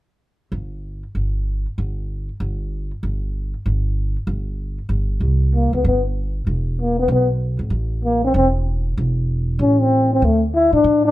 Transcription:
0.52 G1
1.15 G1
1.78 G1
2.40 G1
3.03 G1
3.66 G1
4.27 G1
4.89 G1
5.21 C2
5.55 A#3
5.73 C#2 B3
5.84 G1 B3
6.47 E1
6.81 A#3
6.99 B3
7.08 B1
7.12 B3
7.59 G#1
7.70 A1
8.05 A#3
8.25 C4
8.34 E1 C4
8.97 E1
9.59 A1 C#4
9.81 C4
10.13 C4
10.22 D2 A3
10.55 E4
10.72 A2 D4
10.84 A2
11.05 D4

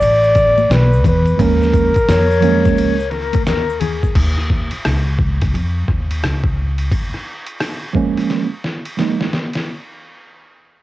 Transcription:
Already playing: D5
0.01 A1, ride, shaker
0.23 shaker
0.35 kick, snare, ride, shaker
0.58 high conga, shaker
0.70 B1 B4, snare, hi-hat pedal, ride, shaker
0.93 shaker
1.04 E2 B4, kick, ride, low conga, shaker
1.25 ride, shaker
1.37 D#2 F3 G#3 A#3 C#4 A#4, kick, ride, shaker
1.62 snare, shaker
1.74 kick, ride, shaker
1.94 muted upright bass stroke, kick, ride, shaker
2.08 F2 C#5, snare, hi-hat pedal, ride, shaker
2.31 shaker
2.40 F3 F#3 A#3 C#4, ride, low conga, shaker
2.48 G#3
2.65 kick, snare, ride, shaker
2.77 C#2, ride, shaker
3.00 shaker
3.11 A#4, snare, ride, shaker
3.33 kick, ride, high conga, shaker
3.46 D#2 A#4, snare, hi-hat pedal, ride, shaker
3.69 shaker
3.80 G#4, ride, low conga, shaker
4.03 kick, shaker
4.15 D#2, kick, crash, ride
4.38 cross-stick
4.50 kick
4.71 muted upright bass stroke, ride
4.85 C#2, cross-stick, hi-hat pedal, ride
5.19 kick
5.42 kick, cross-stick, ride
5.54 F2, ride
5.88 D#2, kick, cross-stick
6.11 ride
6.23 C#2, cross-stick, hi-hat pedal, ride
6.44 kick
6.78 ride
6.92 kick, ride
7.14 cross-stick
7.46 ride
7.60 cross-stick, hi-hat pedal, ride
7.93 F3 G#3 A#3 C#4, kick
8.17 cross-stick, ride
8.30 snare, ride
8.64 snare
8.85 ride
8.97 F3 G#3 A#3 D#4, snare, hi-hat pedal, ride
9.21 snare
9.33 snare
9.53 snare, ride

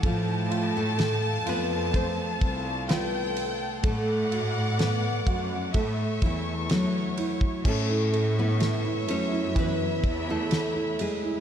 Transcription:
Already playing: A4
0.02 A2 F3 A3 F4 F5 G5 A5, kick, ride
0.50 F4, ride
0.77 A3 A4
0.98 A3, snare, ride
1.46 F2 B3 F4 B4, ride
1.93 A3 C4 C5 A5, kick, ride
2.41 C2, kick, ride
2.88 B3 F4 B4 G5, snare, ride
3.37 ride
3.83 A2 A3 A4 D5 F#5 D6, kick, ride
4.31 F#4, ride
4.79 A3 B3 B4, snare, ride
5.27 F#2 F#4, kick, ride
5.73 A2 A3 A4 C#5 E5 C#6, kick, ride
6.22 E2 E3 E4, kick, ride
6.70 F#3 A3 F#4 C#5, snare, ride
7.17 E4, ride
7.41 kick
7.64 A2 A3 C#4 C#5 E5 C#6, kick, crash
7.68 A4
7.89 E4
8.13 A3, ride
8.37 B3 E4 B4
8.60 A3, snare, ride
8.85 E4
9.08 F#2 A3 C#4 C#5, ride
9.32 E4
9.55 E3 B3 B4 B5, kick, ride
9.80 E4
10.03 E2, kick, ride
10.28 A3 E4 A4
10.51 snare, ride
10.74 E4
10.99 G#3 G#4, ride
11.23 E4

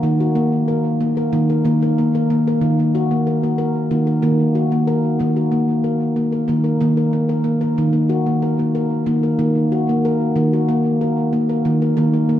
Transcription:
0.03 D#3 A#3
0.20 F#4
0.35 A#3
0.68 A#4
1.01 A#3
1.17 A#4
1.33 D#3 A#3
1.50 A#4
1.65 D#3 A#3
1.83 A#4
1.98 A#3
2.15 A#4
2.30 A#3
2.48 A#4
2.61 D#3
2.79 A#3
2.95 F#4
3.11 A#3
3.27 A#4
3.43 A#3
3.58 A#4
3.91 D#3 A#3
4.07 A#4
4.22 D#3 A#3
4.55 F#4
4.72 A#3
4.87 A#4
5.19 D#3 A#3
5.37 F#4
5.52 A#3
5.84 A#4
6.16 A#3
6.32 A#4
6.48 D#3 A#3
6.64 A#4
6.81 D#3 A#3
6.97 A#4
7.13 A#3
7.29 A#4
7.44 A#3
7.61 A#4
7.78 D#3
7.93 A#3
8.09 F#4
8.26 A#3
8.42 A#4
8.59 A#3
8.75 A#4
9.06 D#3 A#3
9.23 A#4
9.39 D#3 A#3
9.72 F#4
9.89 A#3
10.05 A#4
10.36 D#3 A#3
10.53 F#4
10.69 A#3
11.01 A#4
11.33 A#3
11.49 A#4
11.65 D#3 A#3
11.82 A#4
11.97 D#3 A#3
12.13 A#4
12.29 A#3

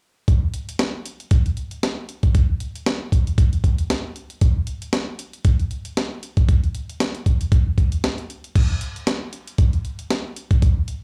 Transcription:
0.28 kick, closed hi-hat
0.54 closed hi-hat
0.69 closed hi-hat
0.79 snare, closed hi-hat
1.06 closed hi-hat
1.20 closed hi-hat
1.31 kick, closed hi-hat
1.46 closed hi-hat
1.57 closed hi-hat
1.71 closed hi-hat
1.83 snare, closed hi-hat
2.09 closed hi-hat
2.23 kick, closed hi-hat
2.35 kick, closed hi-hat
2.60 closed hi-hat
2.76 closed hi-hat
2.86 snare, closed hi-hat
3.12 kick, closed hi-hat
3.27 closed hi-hat
3.38 kick, closed hi-hat
3.53 closed hi-hat
3.64 kick, closed hi-hat
3.78 closed hi-hat
3.90 snare, closed hi-hat
4.16 closed hi-hat
4.30 closed hi-hat
4.41 kick, closed hi-hat
4.67 closed hi-hat
4.82 closed hi-hat
4.93 snare, closed hi-hat
5.19 closed hi-hat
5.33 closed hi-hat
5.45 kick, closed hi-hat
5.60 closed hi-hat
5.71 closed hi-hat
5.85 closed hi-hat
5.97 snare, closed hi-hat
6.23 closed hi-hat
6.37 kick, closed hi-hat
6.49 kick, closed hi-hat
6.64 closed hi-hat
6.75 closed hi-hat
6.90 closed hi-hat
7.00 snare, closed hi-hat
7.15 closed hi-hat
7.26 kick, closed hi-hat
7.41 closed hi-hat
7.52 kick, closed hi-hat
7.78 kick, closed hi-hat
7.92 closed hi-hat
8.04 snare, closed hi-hat
8.18 closed hi-hat
8.30 closed hi-hat
8.44 closed hi-hat
8.56 kick, closed hi-hat, crash
8.81 closed hi-hat
8.96 closed hi-hat
9.07 snare, closed hi-hat
9.33 closed hi-hat
9.47 closed hi-hat
9.58 kick, closed hi-hat
9.73 closed hi-hat
9.85 closed hi-hat
9.99 closed hi-hat
10.10 snare, closed hi-hat
10.36 closed hi-hat
10.51 kick, closed hi-hat
10.62 kick, closed hi-hat
10.88 closed hi-hat

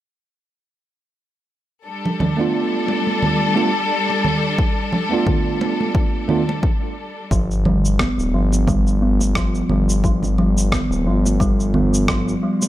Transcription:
1.86 G3 D4 A4
2.05 low conga
2.20 high conga, low conga
2.37 A3 B3 D4
2.41 F4
2.88 muted conga
3.07 high conga
3.23 low conga
3.55 A3 B3 D4 F4, muted conga
4.10 muted conga
4.25 low conga
4.58 kick
4.92 high conga, low conga
5.10 A3 B3 D4 F4
5.27 kick, low conga
5.61 muted conga
5.80 high conga
5.95 kick
6.28 A3 B3 D4 F4, low conga
6.49 muted conga
6.63 kick
7.31 G1 F3, kick, cabasa
7.51 cabasa
7.65 G3, high conga, low conga
7.85 cabasa
7.99 B3, kick, cross-stick, muted conga, cabasa
8.18 D1, cabasa
8.33 G1 F3
8.52 muted conga, high conga, cabasa
8.67 G3, kick, low conga, cabasa
8.87 cabasa
9.02 B3
9.20 muted conga, high conga, cabasa
9.35 F3, kick, cross-stick, cabasa
9.55 cabasa
9.69 G1 G3, low conga
9.89 cabasa
10.04 F3, kick, cabasa
10.23 low conga, cabasa
10.38 G3, low conga
10.58 cabasa
10.72 B3, kick, cross-stick, muted conga, low conga, cabasa
10.90 D1, cabasa
11.06 G1 F3
11.26 high conga, cabasa
11.40 G3, kick, cabasa
11.60 cabasa
11.74 B3, low conga
11.94 cabasa
12.08 F3, kick, cross-stick, cabasa
12.28 cabasa
12.43 G3
12.62 muted conga, cabasa

